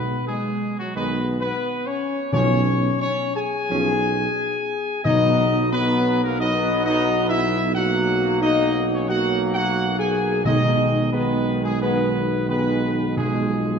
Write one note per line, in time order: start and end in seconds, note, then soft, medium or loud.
0.00 0.16 B1 medium
0.00 0.58 B2 loud
0.00 0.24 B3 medium
0.00 0.24 B4 loud
0.27 0.75 G#3 medium
0.27 0.75 G#4 loud
0.79 0.95 F#3 medium
0.79 0.95 F#4 loud
0.95 1.52 B1 medium
0.95 1.19 D#3 medium
0.95 1.19 G#3 medium
0.95 1.38 B3 medium
0.95 1.28 B4 loud
1.40 1.83 B3 loud
1.40 1.83 B4 loud
1.86 2.18 C#4 loud
1.86 2.31 C#5 loud
2.31 2.90 B1 loud
2.31 3.32 B2 loud
2.31 2.56 F3 medium
2.31 2.96 C#4 loud
2.31 2.56 C#4 medium
2.31 2.97 C#5 loud
3.01 3.34 C#4 loud
3.01 3.33 C#5 loud
3.35 5.01 G#4 loud
3.35 5.01 G#5 loud
3.70 4.27 B1 loud
3.70 3.94 F3 medium
3.70 3.94 C#4 medium
5.05 10.42 B1 loud
5.05 6.03 B2 loud
5.05 5.69 F#3 medium
5.05 5.68 B3 medium
5.05 5.68 D#4 loud
5.05 5.68 D#5 loud
5.72 6.36 F#3 loud
5.72 6.20 B3 loud
5.72 6.36 B3 loud
5.72 6.20 B4 loud
6.23 6.39 A#3 medium
6.23 6.40 A#4 loud
6.39 7.71 F#3 loud
6.39 7.71 B3 loud
6.39 6.83 D#4 loud
6.39 6.82 D#5 loud
6.85 7.27 D#4 loud
6.85 7.27 D#5 loud
7.29 7.72 E4 loud
7.29 7.72 E5 loud
7.75 9.06 F#3 loud
7.75 9.08 A#3 loud
7.75 8.43 F#4 loud
7.75 8.38 F#5 loud
8.42 8.89 D#4 loud
8.42 8.89 D#5 loud
8.93 9.09 C#4 medium
8.93 9.10 C#5 loud
9.09 10.41 F#3 loud
9.09 10.41 A#3 loud
9.09 9.52 F#4 loud
9.09 9.42 F#5 loud
9.54 9.86 F#4 loud
9.54 9.97 F#5 loud
9.98 10.41 G#4 loud
9.98 10.42 G#5 loud
10.45 13.79 B1 loud
10.45 11.43 B2 loud
10.45 11.09 D#3 medium
10.45 11.09 G#3 medium
10.45 11.09 D#4 loud
10.45 11.09 D#5 loud
11.12 11.77 D#3 medium
11.12 11.77 G#3 medium
11.12 11.60 B3 loud
11.12 11.64 B4 loud
11.64 11.72 G#3 medium
11.64 11.80 G#4 loud
11.81 12.32 D#3 medium
11.81 12.32 G#3 medium
11.81 12.45 B3 loud
11.81 12.45 B4 loud
12.49 13.13 D#3 medium
12.49 13.13 G#3 medium
12.49 13.13 B3 medium
12.49 13.13 B4 loud
13.17 13.79 B2 loud
13.17 13.79 F3 medium
13.17 13.79 G#3 medium
13.17 13.79 G#4 loud